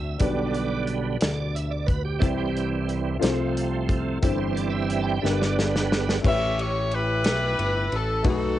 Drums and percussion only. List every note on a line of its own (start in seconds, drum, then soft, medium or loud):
0.20 kick medium
0.20 closed hi-hat medium
0.55 closed hi-hat soft
0.87 closed hi-hat soft
1.21 snare loud
1.21 closed hi-hat medium
1.56 closed hi-hat medium
1.88 kick medium
1.88 closed hi-hat soft
2.22 kick loud
2.22 closed hi-hat medium
2.57 closed hi-hat soft
2.89 closed hi-hat soft
3.22 snare medium
3.22 closed hi-hat medium
3.57 closed hi-hat medium
3.89 kick medium
3.89 closed hi-hat soft
4.22 kick medium
4.22 closed hi-hat medium
4.57 closed hi-hat soft
4.90 closed hi-hat soft
5.25 snare medium
5.42 snare soft
5.59 snare medium
5.76 snare medium
5.92 snare medium
6.09 snare medium
6.24 kick loud
6.24 crash medium
6.59 ride soft
6.91 ride soft
7.24 snare loud
7.24 ride medium
7.59 ride soft
7.92 ride soft
8.24 kick loud
8.24 ride medium